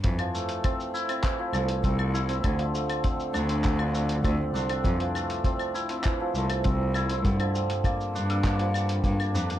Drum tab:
HH |xx-xx--xx--xx--x|xx-xx--xx--xx--x|xx-xx--xx--xx--x|xx-xx--xxx-xx--x|
SH |x-xxxxxxx-xxx-xx|x-xxxxxxx-xxx-xx|x-xxxxxxx-xxx-xx|x-xxxxxxx-xxxxxx|
CL |-x--x--x--x--x--|x--x--x--x--x--x|--x--x--x--x--x-|-x--x--x--x--x--|
CP |--------x-------|--------x-------|--------x-------|--------x-------|
BD |o---o---o---o---|o---o---o---o---|o---o---o---o---|o---o---o---o---|